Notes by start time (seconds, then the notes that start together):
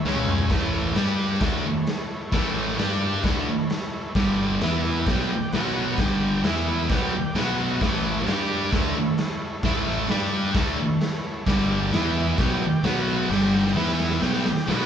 0.03 C#2 C#3 G#3 C#4 G#4 C#5 F#5, snare
0.16 high tom
0.26 G#5, mid tom
0.38 floor tom
0.48 A1 A2 E3 E4 A4 C#5, kick, snare, crash
0.52 A3
0.94 G2 G3 D4 G4 D5, snare, crash
1.39 D2 D3 A3 E4 A4, kick, snare, crash
1.43 D4 C#5
1.86 snare, crash
2.32 A1 A2 E3 A3, kick, snare, crash
2.77 G2 G3 D4 G4 D5, snare, crash
3.21 D2 D3 E4 A4 C#5, kick, crash
3.25 A3 D4, snare
3.70 snare, crash
4.14 G1 G2 D3 G3 D4 G4 D5, kick, snare, crash
4.60 E2 E3 B3 E4 B4 E5, snare, crash
5.05 B1 B2 F#3 G4 D5 G5, kick, snare, crash
5.09 B3
5.52 B1 B2 F#3 B3 F#4 B4 F#5, snare, crash
5.97 G1 G2 G4 D5 G5, kick, snare, crash
6.01 D3 G3
6.43 E2 E3 B3 E4 B4 E5, snare, crash
6.88 B1 B2 F#3 B3 G4 D5 G5, kick, snare, crash
7.34 B1 B2 F#3 B3 F#4 B4 F#5, snare, crash
7.79 A1 A2 E3 E4 A4 C#5, kick, snare, crash
7.83 A3
8.26 G2 G3 D4 G4 D5, snare, crash
8.71 D2 D3 A3 D4 E4 A4, kick, snare, crash
8.75 C#5
9.18 snare, crash
9.63 A1 A2 E3 A3, kick, snare, crash
10.08 G2 G3 D4 G4 D5, snare, crash
10.53 D2 D3 A3 D4 E4 A4 C#5, kick, snare, crash
11.01 snare, crash
11.45 G1 G2 D3 D4 G4 D5, kick, snare, crash
11.49 G3
11.90 E2 E3 B3 E4 B4 E5, snare, crash
11.94 E4
12.38 B1 B2 F#3 B3 G4 D5 G5, kick, snare, crash
12.83 B1 B2 F#3 B3 F#4 B4 F#5, snare, crash
13.28 G1 G2 D3 G3 G4 D5 G5, snare
13.43 snare
13.55 snare
13.66 snare
13.74 E2 E3 B3 E4 B4 E5, snare
13.88 snare
14.00 snare
14.11 snare
14.19 B1 B2 F#3 B3 G4 D5 G5, snare
14.33 snare
14.45 snare
14.57 snare
14.66 B1 B2 F#3 B3 F#4 B4 F#5, snare
14.80 snare